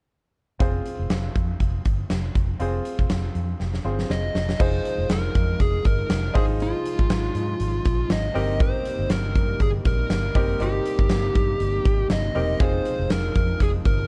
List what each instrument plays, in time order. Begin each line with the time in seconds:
0.59 fingered electric bass F1, grand piano C4 F4 G#4 C5, kick, closed hi-hat
0.86 closed hi-hat
0.99 fingered electric bass F1
1.10 fingered electric bass F1, snare, closed hi-hat
1.35 fingered electric bass F2, kick, closed hi-hat
1.60 fingered electric bass F1, kick, closed hi-hat
1.85 fingered electric bass G1, kick, closed hi-hat
2.10 fingered electric bass F1, snare, closed hi-hat
2.35 fingered electric bass F1, kick, closed hi-hat
2.59 fingered electric bass F1, grand piano C4 F4 G#4 C5, closed hi-hat
2.85 closed hi-hat
2.99 fingered electric bass F1, kick
3.10 fingered electric bass F1, snare, closed hi-hat
3.35 fingered electric bass F2, closed hi-hat
3.60 fingered electric bass F1, snare
3.74 snare
3.85 fingered electric bass G1, grand piano C4 F4 G#4 C5
3.99 snare
4.10 fingered electric bass F1, lead electric guitar D#5, snare
4.35 fingered electric bass F1, snare
4.49 snare
4.59 fingered electric bass F1, analog synth pad C3 F3 G#3 D#4, grand piano D#4 F4 G#4 C5, lead electric guitar C5, kick, crash
4.85 closed hi-hat
4.98 fingered electric bass F1
5.09 fingered electric bass F1, lead electric guitar A#4, snare, closed hi-hat
5.35 fingered electric bass F2, kick, closed hi-hat
5.60 fingered electric bass F1, lead electric guitar G#4, kick, closed hi-hat
5.85 fingered electric bass G1, lead electric guitar A#4, kick, closed hi-hat
6.09 fingered electric bass F1, snare, closed hi-hat
6.34 fingered electric bass G#1, analog synth pad G#3, grand piano D#4 F4 G#4 C5, lead electric guitar G#4, kick, open hi-hat
6.60 lead electric guitar F4, closed hi-hat
6.86 closed hi-hat
6.99 fingered electric bass G#1, kick
7.10 fingered electric bass G#1, snare, closed hi-hat
7.35 fingered electric bass G#2, closed hi-hat
7.60 fingered electric bass G#1, closed hi-hat
7.85 fingered electric bass A#1, kick, closed hi-hat
8.10 fingered electric bass G#1, lead electric guitar D#5, snare, closed hi-hat
8.34 fingered electric bass G1, analog synth pad G3 A#3 D#4, grand piano C4 D#4 G4 A#4, open hi-hat
8.60 lead electric guitar C5, kick, closed hi-hat
8.85 closed hi-hat
8.99 fingered electric bass G1
9.10 fingered electric bass G1, lead electric guitar A#4, snare, closed hi-hat
9.35 fingered electric bass G2, kick, closed hi-hat
9.60 fingered electric bass G1, lead electric guitar G#4, kick, closed hi-hat
9.85 fingered electric bass A#1, lead electric guitar A#4, kick, closed hi-hat
10.10 fingered electric bass G1, snare, closed hi-hat
10.35 fingered electric bass F#1, grand piano C4 D#4 G4 A#4, lead electric guitar A#4, kick, open hi-hat
10.60 fingered electric bass G1, grand piano C4 D#4 G4 A#4, lead electric guitar G4, closed hi-hat
10.85 closed hi-hat
10.99 fingered electric bass G1, kick
11.09 fingered electric bass G1, snare, closed hi-hat
11.35 fingered electric bass G2, kick, closed hi-hat
11.60 fingered electric bass G1, closed hi-hat
11.85 fingered electric bass G#1, kick, closed hi-hat
12.10 fingered electric bass G1, lead electric guitar D#5, snare, closed hi-hat
12.35 fingered electric bass E1, grand piano C4 D#4 G4 A#4, open hi-hat
12.60 fingered electric bass F1, analog synth pad F3 G#3, grand piano C4 D#4 F4 G#4, lead electric guitar C5, kick, closed hi-hat
12.85 closed hi-hat
12.99 fingered electric bass F1
13.10 fingered electric bass F1, lead electric guitar A#4, snare, closed hi-hat
13.35 fingered electric bass F2, kick, closed hi-hat
13.60 fingered electric bass F1, lead electric guitar G#4, kick, closed hi-hat
13.85 fingered electric bass G1, lead electric guitar A#4, kick, closed hi-hat